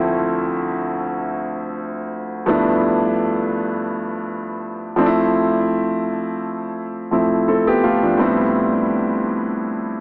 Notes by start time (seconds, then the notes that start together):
Already playing: D2 F3 A3 C4 E4
2.46 G2 F3 A3 B3 D4 E4
4.96 F3 A3 C4 D4
5.06 E4
7.11 F3 A3 C4 E4
7.48 C4 A4
7.67 B3 G4
7.84 A3 F4
8.03 F3 D4
8.17 A2 G3 B3 C4 E4